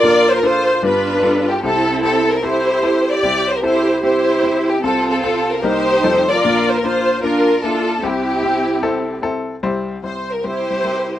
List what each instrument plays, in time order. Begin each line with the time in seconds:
Already playing: string section F4 A#4 D5
0.03 grand piano A#1 A#2 D4 F4 A#4
0.31 string section C5
0.38 string section A#4
0.43 grand piano D4 F4 A4, string section F4 C5
0.83 grand piano G1 G2 G3 B3 D4 F4 B4, string section D4 F4 B4
1.23 grand piano G3 B3 D4 F4 A4
1.50 string section G4
1.63 grand piano C2 C3 C4 E4 G4, string section C4 E4 A4
2.03 grand piano C4 E4 G4, string section A4
2.30 string section A#4
2.43 grand piano C4 E4 A4, string section E4 G4 C5
2.83 grand piano C4 E4 A4
3.11 string section G4 D5
3.23 grand piano C2 C3 C4 E4 G4
3.50 string section C5
3.56 string section A#4
3.63 grand piano C4 E4 A4, string section E4 G4 C5
4.03 grand piano C4 E4 G4, string section E4 G4 C5
4.43 grand piano C4 E4 G4
4.69 string section G4
4.83 grand piano C2 C3 C4 F4 A4, string section C4 F4 A4
5.09 string section A4
5.23 grand piano C4 F4 A4, string section A4
5.50 string section A#4
5.63 grand piano C2 C3 G3 A#3 C4 D#4 A#4, string section D#4 G4 C5
6.04 grand piano F1 F2 G3 C4 D#4 F4 A4
6.30 string section F4 A#4 D5
6.44 grand piano A#1 A#2 A#3 D4 F4
6.70 string section C5
6.77 string section A#4
6.83 grand piano A#3 D4 F4, string section F4 C5
7.23 grand piano A#3 D4 F4, string section D4 F4 A#4
7.64 grand piano A#3 D4 E4, string section D4 F4 A4
8.03 grand piano C2 C3 C4 E4 G4, string section C4 E4 G4
8.43 grand piano C4 E4 G4
8.83 grand piano C4 E4 A4
9.22 grand piano C4 E4 A4
9.63 grand piano C2 C3 G3 C4 E4 C5
10.03 grand piano G3 C4 E4 C5, string section C5
10.31 string section A#4
10.44 grand piano G3 C4 E4 C5, string section E4 G4 C5
10.70 grand piano G3 C4 E4 G4
10.84 grand piano G3 C4 E4 A#4